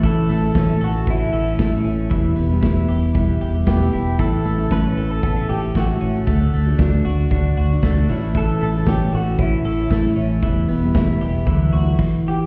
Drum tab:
CC |--------|--------|--------|--------|
HH |xoxoxoxo|xoxoxoxo|xoxoxoxo|xoxoxoxo|
SD |--o---o-|--o---o-|--o---o-|--o---o-|
BD |o-o-o-o-|o-o-o-o-|o-o-o-o-|o-o-o-o-|

CC |--------|------x-|
HH |xoxoxoxo|xo-oxo--|
SD |--o---o-|--o-----|
BD |o-o-o-o-|o-o-o-o-|